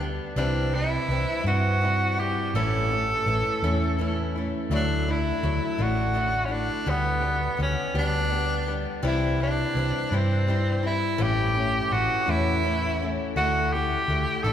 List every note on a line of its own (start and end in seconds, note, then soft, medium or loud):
0.00 0.19 D2 medium
0.00 0.37 B3 soft
0.00 0.37 G4 soft
0.04 0.36 G3 soft
0.36 0.97 C2 loud
0.36 0.73 C3 medium
0.36 0.73 E3 medium
0.36 0.74 G3 medium
0.36 0.74 C4 medium
0.36 0.76 D4 medium
0.36 0.72 E4 medium
0.73 1.10 G3 soft
0.73 1.10 C4 soft
0.73 1.09 E4 medium
0.73 1.46 E4 loud
1.09 1.24 C2 medium
1.09 1.46 E3 medium
1.09 1.47 G3 medium
1.09 1.45 C4 medium
1.13 1.45 E4 medium
1.44 2.35 G2 medium
1.44 1.80 E3 medium
1.44 1.82 G3 medium
1.44 1.82 C4 medium
1.44 1.82 E4 medium
1.44 2.21 F#4 medium
1.48 1.83 C3 medium
1.81 2.18 E3 medium
1.81 2.19 G3 medium
1.81 2.19 C4 medium
1.81 2.16 E4 medium
2.17 2.55 G3 soft
2.17 2.55 C4 soft
2.17 2.54 E4 medium
2.17 2.55 G4 loud
2.54 3.14 A1 loud
2.54 2.91 A2 medium
2.54 2.91 E3 medium
2.54 2.91 A3 medium
2.54 2.91 C#4 medium
2.54 2.90 E4 medium
2.54 4.31 A4 medium
2.91 3.27 A3 soft
2.91 3.27 C#4 medium
2.91 3.27 E4 medium
3.26 3.41 A1 loud
3.26 3.63 E3 medium
3.26 3.63 A3 medium
3.26 3.63 C#4 medium
3.26 3.62 E4 medium
3.63 4.53 E2 medium
3.63 4.00 A2 medium
3.63 3.97 E3 medium
3.63 3.98 A3 medium
3.63 3.99 C#4 medium
3.63 3.99 E4 medium
3.98 4.35 E3 medium
3.98 4.35 A3 medium
3.98 4.36 C#4 medium
3.98 4.34 E4 medium
4.36 4.71 A3 soft
4.36 4.72 C#4 medium
4.36 4.71 E4 medium
4.70 5.30 D2 loud
4.70 5.07 D3 medium
4.70 5.07 F#3 medium
4.70 5.08 A3 medium
4.70 5.08 D4 medium
4.70 5.07 E4 medium
4.75 5.12 D4 medium
5.08 5.42 A3 soft
5.08 5.43 D4 soft
5.08 5.44 E4 medium
5.08 5.84 E4 medium
5.43 5.58 D2 loud
5.43 5.79 F#3 medium
5.43 5.79 A3 medium
5.43 5.78 D4 medium
5.43 5.77 E4 medium
5.78 6.69 A1 medium
5.78 6.16 D3 medium
5.78 6.12 F#3 medium
5.78 6.14 A3 medium
5.78 6.14 D4 medium
5.78 6.15 E4 medium
5.82 6.47 F#4 medium
6.13 6.50 F#3 medium
6.13 6.50 A3 medium
6.13 6.49 D4 medium
6.13 6.47 E4 medium
6.45 6.54 C#4 medium
6.45 6.86 E4 medium
6.50 6.86 A3 soft
6.50 6.87 D4 soft
6.50 6.91 D4 medium
6.86 7.47 D2 loud
6.86 7.23 D3 medium
6.86 7.22 G3 medium
6.86 7.22 B3 medium
6.86 7.61 B3 medium
6.86 7.20 G4 medium
7.21 7.57 G3 soft
7.21 7.58 B3 soft
7.21 7.58 G4 medium
7.57 7.74 D2 medium
7.57 7.94 D3 medium
7.57 7.95 G3 medium
7.57 7.94 B3 medium
7.57 7.94 G4 medium
7.62 7.95 C#4 medium
7.94 8.85 D2 medium
7.94 8.29 D3 medium
7.94 8.29 G3 medium
7.94 8.31 B3 medium
7.94 8.31 G4 medium
7.98 8.74 D4 medium
8.30 8.67 D3 medium
8.30 8.67 G3 medium
8.30 8.66 B3 medium
8.30 8.65 G4 medium
8.66 9.02 G3 soft
8.66 9.02 B3 soft
8.66 9.03 G4 medium
9.03 9.63 C2 loud
9.03 9.39 C3 medium
9.03 9.39 E3 medium
9.03 9.39 G3 medium
9.03 9.39 C4 medium
9.03 9.39 E4 medium
9.07 9.39 E4 medium
9.40 9.75 G3 soft
9.40 9.76 C4 soft
9.40 10.16 D4 medium
9.40 9.76 E4 medium
9.75 9.90 C2 loud
9.75 10.12 E3 medium
9.75 10.12 G3 medium
9.75 10.12 C4 medium
9.75 10.11 E4 medium
10.11 11.02 G2 medium
10.11 10.49 C3 medium
10.11 10.46 E3 medium
10.11 10.47 G3 medium
10.11 10.48 C4 medium
10.11 10.85 C4 medium
10.11 10.48 E4 medium
10.47 10.84 E3 medium
10.47 10.84 G3 medium
10.47 10.83 C4 medium
10.47 10.81 E4 medium
10.83 11.18 G3 soft
10.83 11.19 C4 soft
10.83 11.19 E4 medium
10.83 11.24 E4 medium
11.18 11.80 A1 loud
11.18 11.55 A2 medium
11.18 11.55 E3 medium
11.18 11.55 A3 medium
11.18 11.55 C#4 medium
11.18 11.53 E4 medium
11.22 11.94 G4 loud
11.54 11.90 A3 soft
11.54 11.92 C#4 medium
11.54 11.92 E4 medium
11.91 12.07 A1 loud
11.91 12.26 E3 medium
11.91 12.27 A3 medium
11.91 12.26 C#4 medium
11.91 12.25 E4 medium
11.91 12.31 F#4 loud
12.26 13.18 E2 medium
12.26 12.65 A2 medium
12.26 12.62 E3 medium
12.26 12.63 A3 medium
12.26 12.63 C#4 medium
12.26 12.64 E4 medium
12.26 13.11 E4 medium
12.63 13.00 E3 medium
12.63 13.01 A3 medium
12.63 13.01 C#4 medium
12.63 12.99 E4 medium
13.01 13.36 A3 soft
13.01 13.37 C#4 soft
13.01 13.37 E4 soft
13.36 13.96 D2 loud
13.36 13.73 D3 medium
13.36 13.73 A3 medium
13.36 13.74 E4 medium
13.36 13.74 F#4 medium
13.73 14.09 A3 soft
13.73 14.10 E4 soft
13.73 14.45 G4 medium
14.08 14.24 D2 loud
14.08 14.45 D3 medium
14.08 14.45 A3 medium
14.12 14.45 E4 medium
14.43 14.53 A1 medium
14.43 14.53 D3 medium
14.43 14.53 A3 medium
14.43 14.53 E4 medium
14.43 14.53 F#4 medium
14.43 14.53 A4 medium